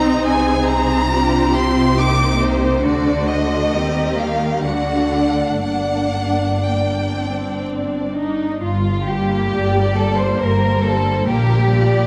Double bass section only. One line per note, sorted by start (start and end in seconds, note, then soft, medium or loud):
0.00 0.22 C2 medium
0.26 2.79 C2 soft
2.83 3.70 D2 soft
3.72 4.63 D#2 soft
4.63 5.62 D2 soft
5.61 8.36 G1 soft
8.61 9.42 G1 soft
9.53 10.30 G1 soft
10.39 11.16 G1 soft
11.26 12.02 A#1 soft